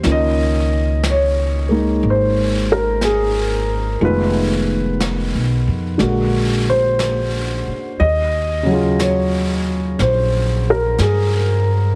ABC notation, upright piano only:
X:1
M:4/4
L:1/8
Q:"Swing" 1/4=60
K:Db
V:1 name="Upright piano"
e2 d2 c B A2 | _c4 z =c2 z | e2 d2 c B A2 |]
V:2 name="Upright piano"
[E,B,DF]3 [A,B,E]4- [A,B,E] | [E,A,_CF]4 [=D,A,B,G]4 | z [D,G,FA]6- [D,G,FA] |]